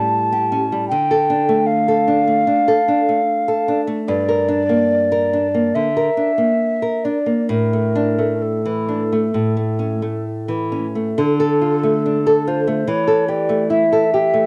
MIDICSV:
0, 0, Header, 1, 3, 480
1, 0, Start_track
1, 0, Key_signature, -1, "minor"
1, 0, Tempo, 794702
1, 548, Time_signature, 4, 2, 24, 8
1, 2465, Tempo, 839161
1, 3905, Tempo, 914634
1, 6305, Tempo, 872093
1, 6785, Tempo, 829876
1, 8184, End_track
2, 0, Start_track
2, 0, Title_t, "Recorder"
2, 0, Program_c, 0, 74
2, 0, Note_on_c, 0, 81, 102
2, 534, Note_off_c, 0, 81, 0
2, 537, Note_on_c, 0, 79, 108
2, 1006, Note_on_c, 0, 77, 105
2, 1015, Note_off_c, 0, 79, 0
2, 2300, Note_off_c, 0, 77, 0
2, 2464, Note_on_c, 0, 74, 106
2, 3418, Note_on_c, 0, 76, 88
2, 3427, Note_off_c, 0, 74, 0
2, 4139, Note_on_c, 0, 74, 74
2, 4146, Note_off_c, 0, 76, 0
2, 4375, Note_off_c, 0, 74, 0
2, 4378, Note_on_c, 0, 70, 83
2, 4862, Note_on_c, 0, 69, 68
2, 4870, Note_off_c, 0, 70, 0
2, 5822, Note_off_c, 0, 69, 0
2, 6307, Note_on_c, 0, 69, 101
2, 7035, Note_on_c, 0, 72, 87
2, 7044, Note_off_c, 0, 69, 0
2, 7269, Note_on_c, 0, 73, 79
2, 7278, Note_off_c, 0, 72, 0
2, 7511, Note_on_c, 0, 74, 89
2, 7520, Note_off_c, 0, 73, 0
2, 7747, Note_off_c, 0, 74, 0
2, 7750, Note_on_c, 0, 76, 90
2, 8184, Note_off_c, 0, 76, 0
2, 8184, End_track
3, 0, Start_track
3, 0, Title_t, "Nylon-string guitar"
3, 0, Program_c, 1, 24
3, 0, Note_on_c, 1, 45, 65
3, 0, Note_on_c, 1, 55, 54
3, 196, Note_on_c, 1, 67, 59
3, 313, Note_on_c, 1, 61, 58
3, 336, Note_off_c, 1, 55, 0
3, 385, Note_off_c, 1, 67, 0
3, 436, Note_on_c, 1, 55, 57
3, 503, Note_off_c, 1, 61, 0
3, 527, Note_off_c, 1, 45, 0
3, 551, Note_off_c, 1, 55, 0
3, 552, Note_on_c, 1, 50, 65
3, 669, Note_on_c, 1, 69, 56
3, 785, Note_on_c, 1, 62, 65
3, 852, Note_off_c, 1, 69, 0
3, 899, Note_on_c, 1, 57, 60
3, 968, Note_off_c, 1, 62, 0
3, 1137, Note_on_c, 1, 69, 60
3, 1254, Note_on_c, 1, 62, 56
3, 1277, Note_off_c, 1, 57, 0
3, 1327, Note_off_c, 1, 69, 0
3, 1374, Note_on_c, 1, 57, 52
3, 1447, Note_off_c, 1, 62, 0
3, 1472, Note_off_c, 1, 50, 0
3, 1493, Note_on_c, 1, 62, 53
3, 1567, Note_off_c, 1, 57, 0
3, 1618, Note_on_c, 1, 69, 58
3, 1687, Note_off_c, 1, 62, 0
3, 1741, Note_on_c, 1, 62, 53
3, 1811, Note_off_c, 1, 69, 0
3, 1865, Note_on_c, 1, 57, 50
3, 1933, Note_off_c, 1, 62, 0
3, 2103, Note_on_c, 1, 69, 57
3, 2223, Note_on_c, 1, 62, 53
3, 2250, Note_off_c, 1, 57, 0
3, 2296, Note_off_c, 1, 69, 0
3, 2340, Note_on_c, 1, 57, 57
3, 2417, Note_off_c, 1, 62, 0
3, 2463, Note_off_c, 1, 57, 0
3, 2465, Note_on_c, 1, 43, 67
3, 2582, Note_on_c, 1, 70, 55
3, 2696, Note_on_c, 1, 62, 54
3, 2772, Note_off_c, 1, 70, 0
3, 2815, Note_on_c, 1, 58, 54
3, 2891, Note_off_c, 1, 62, 0
3, 3057, Note_on_c, 1, 70, 61
3, 3181, Note_on_c, 1, 62, 49
3, 3206, Note_off_c, 1, 58, 0
3, 3253, Note_off_c, 1, 70, 0
3, 3302, Note_on_c, 1, 58, 52
3, 3373, Note_off_c, 1, 62, 0
3, 3398, Note_off_c, 1, 43, 0
3, 3421, Note_on_c, 1, 50, 47
3, 3491, Note_off_c, 1, 58, 0
3, 3543, Note_on_c, 1, 70, 55
3, 3611, Note_off_c, 1, 50, 0
3, 3661, Note_on_c, 1, 62, 50
3, 3735, Note_off_c, 1, 70, 0
3, 3779, Note_on_c, 1, 58, 47
3, 3856, Note_off_c, 1, 62, 0
3, 4023, Note_on_c, 1, 70, 50
3, 4141, Note_on_c, 1, 62, 47
3, 4160, Note_off_c, 1, 58, 0
3, 4209, Note_off_c, 1, 70, 0
3, 4253, Note_on_c, 1, 58, 45
3, 4330, Note_off_c, 1, 62, 0
3, 4373, Note_on_c, 1, 45, 64
3, 4375, Note_off_c, 1, 58, 0
3, 4499, Note_on_c, 1, 57, 48
3, 4616, Note_on_c, 1, 62, 53
3, 4692, Note_off_c, 1, 57, 0
3, 4737, Note_on_c, 1, 57, 46
3, 4811, Note_off_c, 1, 62, 0
3, 4984, Note_on_c, 1, 52, 53
3, 5105, Note_on_c, 1, 62, 46
3, 5125, Note_off_c, 1, 57, 0
3, 5175, Note_off_c, 1, 52, 0
3, 5230, Note_on_c, 1, 57, 50
3, 5295, Note_off_c, 1, 62, 0
3, 5319, Note_off_c, 1, 45, 0
3, 5345, Note_on_c, 1, 45, 56
3, 5346, Note_off_c, 1, 57, 0
3, 5463, Note_on_c, 1, 57, 47
3, 5580, Note_on_c, 1, 61, 45
3, 5654, Note_off_c, 1, 57, 0
3, 5702, Note_on_c, 1, 57, 43
3, 5773, Note_off_c, 1, 61, 0
3, 5944, Note_on_c, 1, 52, 47
3, 6067, Note_on_c, 1, 61, 46
3, 6090, Note_off_c, 1, 57, 0
3, 6139, Note_off_c, 1, 52, 0
3, 6190, Note_on_c, 1, 57, 45
3, 6259, Note_off_c, 1, 61, 0
3, 6285, Note_off_c, 1, 45, 0
3, 6306, Note_off_c, 1, 57, 0
3, 6309, Note_on_c, 1, 50, 74
3, 6429, Note_on_c, 1, 69, 61
3, 6549, Note_on_c, 1, 65, 58
3, 6620, Note_off_c, 1, 69, 0
3, 6669, Note_on_c, 1, 57, 53
3, 6739, Note_off_c, 1, 65, 0
3, 6792, Note_on_c, 1, 62, 55
3, 6860, Note_off_c, 1, 57, 0
3, 6913, Note_on_c, 1, 69, 62
3, 6984, Note_off_c, 1, 62, 0
3, 7034, Note_on_c, 1, 65, 60
3, 7103, Note_off_c, 1, 69, 0
3, 7150, Note_on_c, 1, 57, 54
3, 7223, Note_off_c, 1, 65, 0
3, 7247, Note_off_c, 1, 50, 0
3, 7266, Note_on_c, 1, 52, 68
3, 7268, Note_off_c, 1, 57, 0
3, 7382, Note_on_c, 1, 69, 60
3, 7500, Note_off_c, 1, 69, 0
3, 7502, Note_on_c, 1, 67, 56
3, 7623, Note_on_c, 1, 57, 54
3, 7696, Note_off_c, 1, 67, 0
3, 7743, Note_on_c, 1, 64, 60
3, 7816, Note_off_c, 1, 57, 0
3, 7873, Note_on_c, 1, 69, 55
3, 7936, Note_off_c, 1, 64, 0
3, 7993, Note_off_c, 1, 69, 0
3, 7996, Note_on_c, 1, 67, 50
3, 8111, Note_on_c, 1, 57, 49
3, 8181, Note_off_c, 1, 67, 0
3, 8184, Note_off_c, 1, 52, 0
3, 8184, Note_off_c, 1, 57, 0
3, 8184, End_track
0, 0, End_of_file